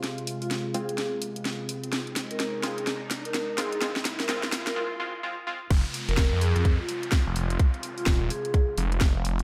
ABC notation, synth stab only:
X:1
M:4/4
L:1/8
Q:"Swing 16ths" 1/4=127
K:Fm
V:1 name="Synth stab"
z3 [A,CF] z4 | z3 [A,CF] z3 [A,CF] | [A,CF] z [A,CF] z [A,CF] [A,CF] [A,CF] [A,CF] | z8 |
z8 |]